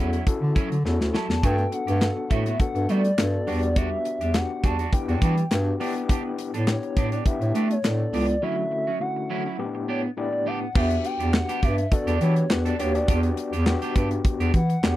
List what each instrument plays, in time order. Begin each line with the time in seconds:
Already playing: bass clarinet E2, clean electric guitar F#3, tine electric piano C#4 E4 F#4 A4, soft synth lead F#5
0.00 clean electric guitar C#4 E4
0.13 clean electric guitar F#3 C#4 E4, closed hi-hat
0.27 tine electric piano C#4 E4 F#4 A4, muted clean electric guitar stroke, kick, closed hi-hat
0.42 bass clarinet D3, muted clean electric guitar stroke
0.55 clean electric guitar F#3 C#4 E4, kick, closed hi-hat
0.71 bass clarinet D3, muted clean electric guitar stroke, closed hi-hat
0.85 bass clarinet E2, tine electric piano C#4 E4 F#4 A4, muted clean electric guitar stroke, snare
1.00 bass clarinet D2, muted clean electric guitar stroke, snare
1.14 clean electric guitar F#3 C#4 E4, soft synth lead A5, snare
1.29 bass clarinet E2, muted clean electric guitar stroke, snare
1.43 bass clarinet G2, clean electric guitar A3 B3 F#4, tine electric piano B3 D4 F#4 A4, soft synth lead G5, kick, closed hi-hat
1.58 muted clean electric guitar stroke, closed hi-hat
1.72 soft synth lead F#5, muted clean electric guitar stroke, closed hi-hat
1.87 bass clarinet G2, clean electric guitar A3 B3 G4, closed hi-hat
2.01 tine electric piano B3 D4 F#4 A4, snare, clap, closed hi-hat
2.17 muted clean electric guitar stroke
2.30 bass clarinet A2, clean electric guitar A3 B3 F#4, soft synth lead E5, kick, closed hi-hat
2.46 clean electric guitar A3 B3 F#4, closed hi-hat
2.59 tine electric piano B3 D4 F#4 A4, soft synth lead F#5, muted clean electric guitar stroke, kick, closed hi-hat
2.75 bass clarinet G2, muted clean electric guitar stroke, closed hi-hat
2.89 bass clarinet G3, clean electric guitar A3 B3 F#4, soft synth lead D5, closed hi-hat
3.04 muted clean electric guitar stroke, closed hi-hat
3.18 bass clarinet G2, tine electric piano B3 D4 F#4 A4, muted clean electric guitar stroke, snare, clap, closed hi-hat
3.34 muted clean electric guitar stroke
3.47 bass clarinet E2, clean electric guitar G3 D4 F#4, tine electric piano B3 D4 F#4 G4, open hi-hat
3.63 muted clean electric guitar stroke, closed hi-hat
3.76 clean electric guitar G3 D4 F#4, soft synth lead E5, kick, closed hi-hat
3.92 muted clean electric guitar stroke
4.05 muted clean electric guitar stroke, closed hi-hat
4.21 bass clarinet E2, clean electric guitar G3 D4 G4, closed hi-hat
4.34 tine electric piano B3 D4 F#4 G4, soft synth lead F#5, snare, clap, closed hi-hat
4.50 muted clean electric guitar stroke
4.64 bass clarinet E2, clean electric guitar G3 D4 F#4, soft synth lead A5, kick, closed hi-hat
4.79 clean electric guitar G3 D4 F#4, closed hi-hat
4.92 tine electric piano B3 D4 E4 G4, soft synth lead G5, kick, closed hi-hat
5.08 bass clarinet E2, clean electric guitar G3 D4 F#4, closed hi-hat
5.22 bass clarinet E3, clean electric guitar G3 D4 F#4, kick, closed hi-hat
5.38 muted clean electric guitar stroke, closed hi-hat
5.51 bass clarinet G2, tine electric piano B3 D4 F#4 G4, muted clean electric guitar stroke, snare, clap, closed hi-hat
5.67 muted clean electric guitar stroke
5.80 tine electric piano B3 D4 E4 G4, clean electric guitar B3 D4 G4, open hi-hat
5.96 muted clean electric guitar stroke, closed hi-hat
6.09 clean electric guitar B3 D4 G4, kick, closed hi-hat
6.25 muted clean electric guitar stroke
6.38 muted clean electric guitar stroke, closed hi-hat
6.54 bass clarinet A2, clean electric guitar B3 D4 A4, closed hi-hat
6.67 tine electric piano B3 D4 E4 G4, soft synth lead C#5, snare, clap, closed hi-hat
6.83 muted clean electric guitar stroke, closed hi-hat
6.97 bass clarinet A2, clean electric guitar B3 D4 G4, kick, closed hi-hat
7.12 clean electric guitar B3 D4 G4, soft synth lead D5, closed hi-hat
7.25 tine electric piano B3 D4 E4 G4, soft synth lead E5, kick, closed hi-hat
7.41 bass clarinet A2, muted clean electric guitar stroke, closed hi-hat
7.55 bass clarinet A3, clean electric guitar B3 D4 G4, closed hi-hat
7.70 soft synth lead C#5, muted clean electric guitar stroke, closed hi-hat
7.84 bass clarinet A2, tine electric piano B3 D4 E4 A4, soft synth lead D5, muted clean electric guitar stroke, snare, clap, closed hi-hat
8.00 muted clean electric guitar stroke
8.13 bass clarinet C#2, clean electric guitar B3 D4 G4, open hi-hat
8.29 muted clean electric guitar stroke, closed hi-hat
8.42 tine electric piano D3 A3 C#4 E4 F#4, clean electric guitar F#3 C#4 E4, soft synth lead E5
8.58 muted clean electric guitar stroke
8.72 muted clean electric guitar stroke
8.87 clean electric guitar F#3 C#4 F#4
9.00 tine electric piano D3 A3 C#4 E4 F#4, soft synth lead F#5, muted clean electric guitar stroke
9.16 muted clean electric guitar stroke
9.30 clean electric guitar F#3 C#4 E4
9.45 clean electric guitar F#3 C#4 E4
9.58 tine electric piano A2 B3 C#4 E4 G4, muted clean electric guitar stroke
9.65 tine electric piano D4
9.75 muted clean electric guitar stroke
9.88 clean electric guitar B3 D4 G4, soft synth lead C#5
10.04 muted clean electric guitar stroke
10.17 tine electric piano A2 B3 D4 E4 G4, soft synth lead D5, muted clean electric guitar stroke
10.33 muted clean electric guitar stroke
10.46 clean electric guitar B3 D4 G4, soft synth lead F#5
10.62 muted clean electric guitar stroke
10.75 bass clarinet E2, clean electric guitar B3 D4 G4, tine electric piano B3 D4 F#4 G4, soft synth lead E5, kick, crash
10.91 muted clean electric guitar stroke, closed hi-hat
11.04 soft synth lead G5, muted clean electric guitar stroke, closed hi-hat
11.20 bass clarinet E2, clean electric guitar B3 D4 G4, closed hi-hat
11.34 soft synth lead F#5, snare, clap
11.49 clean electric guitar B3 D4 G4, closed hi-hat
11.62 bass clarinet G2, clean electric guitar B3 D4 G4, soft synth lead E5, kick, closed hi-hat
11.78 muted clean electric guitar stroke, closed hi-hat
11.91 tine electric piano B3 D4 F#4 A4, soft synth lead D5, muted clean electric guitar stroke, kick, closed hi-hat
12.07 bass clarinet E2, clean electric guitar B3 D4 G4, closed hi-hat
12.21 bass clarinet E3, clean electric guitar B3 D4 G4, tine electric piano B3 D4 F#4 G4, soft synth lead C#5, closed hi-hat
12.36 muted clean electric guitar stroke, closed hi-hat
12.50 bass clarinet E2, tine electric piano B3 D4 F#4 G4, soft synth lead B4, muted clean electric guitar stroke, snare, clap
12.65 clean electric guitar B3 D4 A4, soft synth lead D5, closed hi-hat
12.79 bass clarinet D#2, clean electric guitar B3 D4 G4, tine electric piano B3 D4 F#4 G4, soft synth lead C#5, closed hi-hat
12.95 tine electric piano B3 D4 F#4 G4, soft synth lead D5, muted clean electric guitar stroke, closed hi-hat
13.08 bass clarinet E2, clean electric guitar B3 D4 G4, kick, closed hi-hat
13.23 muted clean electric guitar stroke, closed hi-hat
13.37 muted clean electric guitar stroke, closed hi-hat
13.53 bass clarinet E2, clean electric guitar B3 D4 G4, closed hi-hat
13.66 tine electric piano B3 D4 F#4 G4, snare, clap
13.82 clean electric guitar B3 D4 G4, closed hi-hat
13.96 bass clarinet G2, clean electric guitar B3 D4 G4, kick, closed hi-hat
14.11 muted clean electric guitar stroke, closed hi-hat
14.25 muted clean electric guitar stroke, kick, closed hi-hat
14.40 bass clarinet E2, clean electric guitar B3 D4 G4, closed hi-hat
14.54 bass clarinet E3, soft synth lead F#5, kick, closed hi-hat
14.70 muted clean electric guitar stroke, closed hi-hat
14.83 bass clarinet E2, tine electric piano B3 D4 F#4 G4, muted clean electric guitar stroke, snare, clap